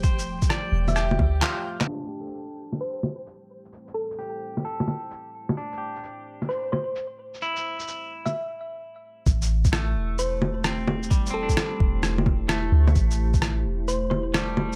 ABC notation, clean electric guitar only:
X:1
M:4/4
L:1/16
Q:"Swing 16ths" 1/4=130
K:Am
V:1 name="Clean electric guitar"
c4 d4 G4 F4 | D G A8- A2 z4 | z4 G4 A8 | D G8- G2 z4 z |
E8 z8 | z4 A,8 C4 | G, C D8- D2 A,4- | A,6 z6 [G,A,]4 |]